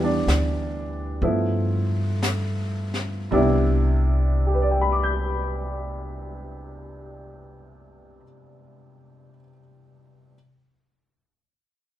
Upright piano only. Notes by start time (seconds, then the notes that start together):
Already playing: E3 G3
0.00 B3 D4
1.22 F3 A3 B3 E4
3.31 C3 G3 B3 D4 E4
4.46 G4
4.54 B4
4.62 D5
4.71 G5
4.81 B5
4.92 D6
5.03 G6